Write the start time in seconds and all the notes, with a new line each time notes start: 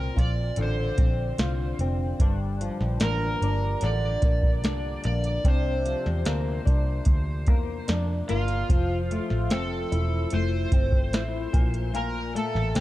Already playing: A#2 C4 F4 A#4
0.16 A#1 F4 D5, kick, closed hi-hat
0.56 A1 D3, closed hi-hat
0.63 C5
0.98 A#1 C4, kick, closed hi-hat
1.38 C2 F4, snare, closed hi-hat
1.79 F1 C4, closed hi-hat
2.20 G1 G2 D4, kick, closed hi-hat
2.61 F3, closed hi-hat
2.81 A#1, snare
3.00 A1 A#3 A#4, snare, closed hi-hat
3.42 G1 D4, closed hi-hat
3.81 A1 D3 D5, closed hi-hat
4.22 A#1 A#3, kick, closed hi-hat
4.43 kick
4.64 C2 D4, snare, closed hi-hat
5.04 A#1 A#3 D5, closed hi-hat
5.24 closed hi-hat
5.45 C2 C3 D4 C5, kick, closed hi-hat
5.86 F3, closed hi-hat
6.06 E2, snare
6.25 D2 A#3, snare, closed hi-hat
6.65 C2 D4, kick, closed hi-hat
7.05 D2, kick, closed hi-hat
7.47 E2 A#3, kick, closed hi-hat
7.88 F2 D4, snare, closed hi-hat
8.28 G1 A#3 F4, closed hi-hat
8.48 closed hi-hat
8.70 F1 F3, kick, closed hi-hat
9.11 A3, closed hi-hat
9.30 A1, snare
9.50 F1 C4 A4, snare, closed hi-hat
9.92 E1 E4, closed hi-hat
10.30 F1 A3 C5, closed hi-hat
10.72 G1 C4, kick, closed hi-hat
10.92 kick
11.13 A1 E4, snare, closed hi-hat
11.53 A#1 A#2, kick, closed hi-hat
11.74 closed hi-hat
11.94 A#2 F4 A#4, closed hi-hat
12.35 A3 A4, closed hi-hat
12.55 A1, snare
12.75 C2 C4, snare, closed hi-hat